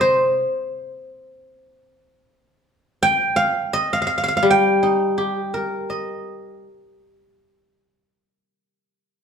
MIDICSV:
0, 0, Header, 1, 2, 480
1, 0, Start_track
1, 0, Tempo, 753769
1, 24, Time_signature, 4, 2, 24, 8
1, 1463, Tempo, 723764
1, 4343, Tempo, 803213
1, 5892, End_track
2, 0, Start_track
2, 0, Title_t, "Guzheng"
2, 0, Program_c, 0, 107
2, 0, Note_on_c, 0, 48, 39
2, 0, Note_on_c, 0, 70, 52
2, 0, Note_on_c, 0, 75, 44
2, 0, Note_on_c, 0, 77, 32
2, 0, Note_on_c, 0, 79, 30
2, 5, Note_on_c, 0, 72, 57
2, 177, Note_off_c, 0, 79, 0
2, 262, Note_off_c, 0, 48, 0
2, 277, Note_off_c, 0, 77, 0
2, 649, Note_off_c, 0, 70, 0
2, 1097, Note_off_c, 0, 75, 0
2, 1266, Note_off_c, 0, 72, 0
2, 1946, Note_on_c, 0, 79, 92
2, 2169, Note_on_c, 0, 77, 68
2, 2415, Note_on_c, 0, 75, 68
2, 2543, Note_off_c, 0, 77, 0
2, 2546, Note_on_c, 0, 77, 65
2, 2601, Note_off_c, 0, 77, 0
2, 2603, Note_on_c, 0, 77, 53
2, 2634, Note_off_c, 0, 77, 0
2, 2637, Note_on_c, 0, 77, 61
2, 2707, Note_off_c, 0, 77, 0
2, 2710, Note_on_c, 0, 77, 51
2, 2746, Note_off_c, 0, 77, 0
2, 2748, Note_on_c, 0, 77, 63
2, 2777, Note_off_c, 0, 77, 0
2, 2780, Note_on_c, 0, 77, 55
2, 2833, Note_off_c, 0, 77, 0
2, 2836, Note_on_c, 0, 77, 60
2, 2874, Note_on_c, 0, 55, 49
2, 2924, Note_off_c, 0, 79, 0
2, 2927, Note_on_c, 0, 79, 71
2, 3141, Note_on_c, 0, 63, 38
2, 3373, Note_on_c, 0, 67, 34
2, 3602, Note_off_c, 0, 75, 0
2, 3612, Note_on_c, 0, 70, 33
2, 3851, Note_on_c, 0, 75, 28
2, 3941, Note_off_c, 0, 77, 0
2, 4099, Note_off_c, 0, 63, 0
2, 4333, Note_off_c, 0, 55, 0
2, 4341, Note_off_c, 0, 67, 0
2, 4569, Note_off_c, 0, 70, 0
2, 4806, Note_off_c, 0, 75, 0
2, 5296, Note_off_c, 0, 79, 0
2, 5892, End_track
0, 0, End_of_file